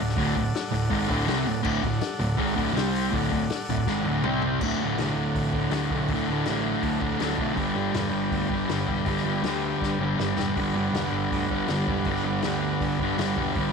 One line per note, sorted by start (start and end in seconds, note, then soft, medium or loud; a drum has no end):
0.00 0.16 D1 medium
0.00 0.14 D2 medium
0.00 0.14 A2 medium
0.00 1.62 A4 medium
0.00 1.61 D5 medium
0.00 1.62 F#5 medium
0.09 snare soft
0.17 0.34 D1 loud
0.17 0.34 D2 medium
0.17 0.35 A2 loud
0.17 0.36 D3 medium
0.17 kick loud
0.17 open hi-hat medium
0.36 0.53 D1 medium
0.36 0.50 D2 medium
0.36 0.51 A2 medium
0.36 kick medium
0.36 open hi-hat medium
0.55 snare loud
0.55 open hi-hat medium
0.72 0.90 D1 medium
0.72 0.87 D2 medium
0.72 0.87 A2 medium
0.72 open hi-hat medium
0.90 1.08 G#1 medium
0.90 1.08 G#2 medium
0.90 1.09 D#3 loud
0.90 1.10 G#3 loud
0.90 kick loud
0.90 open hi-hat medium
1.08 1.27 D1 loud
1.08 1.27 D2 medium
1.08 1.27 A2 medium
1.08 1.27 D3 loud
1.08 kick medium
1.08 open hi-hat medium
1.27 1.45 C2 medium
1.27 1.46 C3 loud
1.27 1.46 G3 medium
1.27 1.46 C4 medium
1.27 snare loud
1.27 open hi-hat medium
1.46 1.63 D1 medium
1.46 1.61 D2 medium
1.46 1.61 A2 medium
1.46 open hi-hat medium
1.63 1.82 D1 loud
1.63 1.81 D2 medium
1.63 1.82 A2 loud
1.63 1.82 D3 loud
1.63 2.74 A4 medium
1.63 2.74 D5 medium
1.63 2.73 F#5 medium
1.63 kick loud
1.63 crash medium
1.83 2.00 D1 medium
1.83 1.98 D2 medium
1.83 1.98 A2 medium
1.83 kick medium
1.83 open hi-hat medium
2.01 snare loud
2.01 open hi-hat medium
2.19 2.38 D1 medium
2.19 2.35 D2 medium
2.19 2.35 A2 medium
2.19 open hi-hat medium
2.37 2.56 G#1 medium
2.37 2.54 G#2 medium
2.37 2.56 D#3 loud
2.37 2.56 G#3 loud
2.37 kick loud
2.37 open hi-hat medium
2.55 2.74 D1 loud
2.55 2.73 D2 loud
2.55 2.73 A2 loud
2.55 2.74 D3 loud
2.55 kick medium
2.55 open hi-hat medium
2.73 3.10 C2 loud
2.73 3.11 C3 medium
2.73 3.11 G3 loud
2.73 3.12 C4 medium
2.73 3.13 G4 medium
2.73 3.13 G5 medium
2.73 open hi-hat medium
2.77 3.13 C5 medium
2.77 snare loud
2.95 open hi-hat medium
3.12 3.30 D1 medium
3.12 3.30 D2 medium
3.12 3.31 A2 loud
3.12 3.31 D3 loud
3.12 4.22 A4 medium
3.12 4.22 D5 medium
3.12 4.22 F#5 medium
3.12 kick loud
3.12 open hi-hat medium
3.31 3.49 D1 medium
3.31 3.46 D2 medium
3.31 3.46 A2 medium
3.31 kick medium
3.31 open hi-hat medium
3.50 snare loud
3.50 open hi-hat medium
3.69 3.86 D1 medium
3.69 3.84 D2 medium
3.69 3.84 A2 medium
3.69 open hi-hat medium
3.77 kick medium
3.87 4.03 G#1 medium
3.87 4.05 G#2 medium
3.87 4.06 D#3 loud
3.87 4.06 G#3 loud
3.87 kick loud
3.87 snare medium
4.04 4.22 D1 loud
4.04 4.24 D2 medium
4.08 4.24 A2 medium
4.08 4.25 D3 loud
4.22 4.57 C2 medium
4.22 4.60 C3 medium
4.22 4.61 G3 medium
4.22 4.61 G4 medium
4.22 4.60 C5 medium
4.22 4.61 G5 medium
4.22 mid tom medium
4.26 4.61 C4 loud
4.42 floor tom loud
4.61 4.75 D1 loud
4.61 4.99 D2 medium
4.61 4.84 A2 medium
4.61 4.80 D3 medium
4.61 7.54 A4 medium
4.61 7.54 D5 medium
4.61 7.54 F#5 medium
4.61 kick medium
4.61 crash loud
4.78 4.92 D1 medium
4.78 5.03 D3 medium
4.85 5.00 A2 medium
4.96 5.11 B1 medium
4.96 5.70 D2 medium
4.96 snare loud
4.96 open hi-hat medium
5.02 5.57 A2 medium
5.02 5.53 D3 medium
5.15 5.29 D1 medium
5.35 5.49 A1 medium
5.35 kick medium
5.35 open hi-hat medium
5.53 5.67 D1 medium
5.53 5.74 D3 medium
5.53 kick medium
5.58 5.72 A2 medium
5.71 5.85 D1 medium
5.71 6.08 D2 medium
5.71 5.94 A2 medium
5.71 5.91 D3 medium
5.71 snare loud
5.71 open hi-hat medium
5.90 6.04 B1 medium
5.90 6.13 D3 medium
5.90 kick medium
5.96 6.11 A2 medium
6.08 6.23 D1 medium
6.08 6.45 D2 medium
6.08 6.31 A2 medium
6.08 kick loud
6.08 open hi-hat medium
6.14 6.27 D3 loud
6.28 6.42 D1 medium
6.28 6.49 D3 medium
6.32 6.47 A2 medium
6.45 6.74 A1 medium
6.45 7.18 D2 medium
6.45 7.04 A2 medium
6.45 snare loud
6.45 open hi-hat medium
6.50 7.00 D3 medium
6.83 6.97 D2 medium
6.83 kick medium
6.83 open hi-hat medium
7.01 7.16 D1 medium
7.01 7.20 A2 medium
7.01 7.22 D3 medium
7.01 kick medium
7.19 7.34 D1 medium
7.19 7.54 D2 medium
7.19 7.40 A2 medium
7.19 7.36 D3 medium
7.19 7.56 A5 medium
7.19 snare loud
7.19 open hi-hat medium
7.37 7.53 B1 medium
7.37 7.56 D3 medium
7.37 kick medium
7.41 7.57 A2 medium
7.55 7.71 G1 loud
7.55 7.93 G2 medium
7.55 7.77 D3 medium
7.55 kick loud
7.55 open hi-hat soft
7.59 7.74 G3 loud
7.59 10.53 B4 medium
7.59 10.54 D5 medium
7.59 10.54 G5 medium
7.75 7.90 G1 medium
7.75 7.94 D3 medium
7.75 7.97 G3 medium
7.93 8.08 E1 medium
7.93 8.68 G2 medium
7.93 8.54 D3 medium
7.93 snare loud
7.93 open hi-hat medium
7.98 8.50 G3 medium
8.12 8.27 G1 medium
8.31 8.46 D2 medium
8.31 kick medium
8.31 open hi-hat medium
8.50 8.64 G1 medium
8.50 8.72 G3 medium
8.50 kick medium
8.55 8.69 D3 medium
8.68 8.84 G1 loud
8.68 9.05 G2 medium
8.68 8.90 D3 loud
8.68 snare loud
8.68 open hi-hat medium
8.73 8.87 G3 loud
8.87 9.02 E1 medium
8.87 9.09 G3 medium
8.87 kick medium
8.91 9.07 D3 medium
9.06 9.21 G1 medium
9.06 9.43 G2 medium
9.06 9.28 D3 medium
9.06 9.25 G3 loud
9.06 kick loud
9.06 open hi-hat medium
9.17 snare soft
9.24 9.39 G1 medium
9.24 9.47 G3 medium
9.29 9.44 D3 medium
9.43 9.71 D2 medium
9.43 10.18 G2 medium
9.43 10.03 D3 medium
9.43 snare medium
9.43 open hi-hat soft
9.47 10.00 G3 medium
9.82 9.96 G2 medium
9.82 kick medium
9.82 snare medium
9.99 10.13 G1 medium
9.99 10.22 G3 medium
10.04 10.20 D3 medium
10.18 10.32 G1 medium
10.18 10.56 G2 medium
10.18 10.41 D3 medium
10.18 snare medium
10.23 10.37 G3 loud
10.36 10.51 E1 medium
10.36 10.60 G3 medium
10.36 snare medium
10.42 10.57 D3 medium
10.56 10.70 G1 loud
10.56 10.94 G2 medium
10.56 10.78 D3 medium
10.56 13.52 B4 medium
10.56 13.52 D5 medium
10.56 13.52 F#5 medium
10.56 kick medium
10.56 open hi-hat medium
10.60 10.75 G3 medium
10.74 10.89 G1 medium
10.74 10.98 G3 medium
10.79 10.95 D3 medium
10.92 11.07 E1 medium
10.92 11.68 G2 medium
10.92 snare loud
10.92 open hi-hat medium
10.96 11.54 D3 medium
10.96 11.51 G3 medium
11.12 11.26 G1 loud
11.32 11.46 D2 medium
11.32 kick medium
11.32 open hi-hat medium
11.50 11.64 G1 medium
11.50 11.71 G3 medium
11.50 kick medium
11.55 11.69 D3 medium
11.68 11.82 G1 medium
11.68 12.07 G2 medium
11.68 11.91 D3 loud
11.68 snare loud
11.68 open hi-hat medium
11.72 11.88 G3 medium
11.87 12.01 E1 medium
11.87 12.10 G3 medium
11.87 kick medium
11.92 12.08 D3 medium
12.05 12.20 G1 loud
12.05 12.43 G2 medium
12.05 kick loud
12.05 open hi-hat soft
12.09 12.27 D3 medium
12.09 12.25 G3 loud
12.15 snare soft
12.24 12.38 G1 medium
12.24 12.47 G3 medium
12.29 12.45 D3 medium
12.42 12.72 D2 medium
12.42 13.18 G2 medium
12.42 13.02 D3 medium
12.42 snare loud
12.42 open hi-hat medium
12.47 12.99 G3 medium
12.80 12.95 G2 medium
12.80 kick medium
12.80 open hi-hat medium
12.99 13.13 G1 medium
12.99 13.21 G3 medium
12.99 kick medium
13.04 13.19 D3 medium
13.17 13.32 G1 medium
13.17 13.55 G2 medium
13.17 13.41 D3 medium
13.17 snare loud
13.17 open hi-hat medium
13.22 13.37 G3 loud
13.36 13.51 E1 medium
13.36 13.59 G3 medium
13.36 kick medium
13.42 13.57 D3 medium
13.54 13.70 G1 loud
13.54 13.72 G2 medium
13.54 13.72 B4 medium
13.54 13.72 D5 medium
13.54 13.72 G5 medium
13.54 kick loud
13.54 open hi-hat soft
13.58 13.72 D3 medium
13.58 13.72 G3 loud